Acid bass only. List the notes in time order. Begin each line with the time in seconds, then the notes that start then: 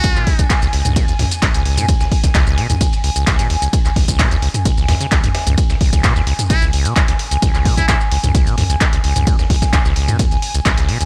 0.16 B2
0.27 D#2
0.39 C#2
0.62 C#2
0.73 C#2
0.85 C#2
0.96 B2
1.08 D#2
1.19 C#2
1.42 C#2
1.54 C#2
1.65 C#2
1.77 B2
1.88 D#2
2.00 C#2
2.24 C#2
2.35 C#2
2.47 C#2
2.58 B2
2.70 D#2
2.81 C#2
3.04 C#2
3.16 C#2
3.39 B2
3.50 D#2
3.62 C#2
3.85 C#2
3.96 C#2
4.08 C#2
4.19 B2
4.31 D#2
4.42 C#2
4.65 C#2
4.77 C#2
4.89 D#2
5.01 C#3
5.12 C#2
5.24 C#2
5.47 C#2
5.70 C#2
5.81 C#2
5.93 C#2
6.04 B2
6.16 D#2
6.27 C#2
6.50 C#2
6.62 C#2
6.73 C#2
6.85 B2
6.96 D#2
7.08 C#2
7.31 C#2
7.42 C#2
7.54 C#2
7.65 B2
7.77 D#2
7.88 C#2
8.11 C#2
8.23 C#2
8.35 C#2
8.47 B2
8.58 D#2
8.70 C#2
8.93 C#2
9.04 C#2
9.16 C#2
9.27 B2
9.39 D#2
9.50 C#2
9.73 C#2
9.85 C#2
9.96 C#2
10.08 B2
10.19 D#2
10.31 C#2
10.54 C#2
10.65 C#2
10.77 C#2
10.89 B2
11.01 D#2